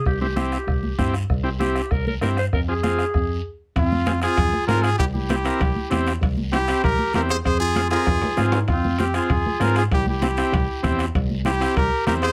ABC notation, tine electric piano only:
X:1
M:4/4
L:1/8
Q:1/4=195
K:Fm
V:1 name="Tine electric piano" clef=bass
C,,4 C,,2 G,,2 | C,,4 C,,2 G,,2 | F,,4 F,,2 z2 | F,,4 F,, z A,,2 |
C,,4 C,, z =E,,2 | C,,4 C,, z =E,,2 | F,,4 F,, z A,,2 | F,,4 F,, z A,,2 |
C,,4 C,, z =E,,2 | C,,4 C,, z =E,,2 |]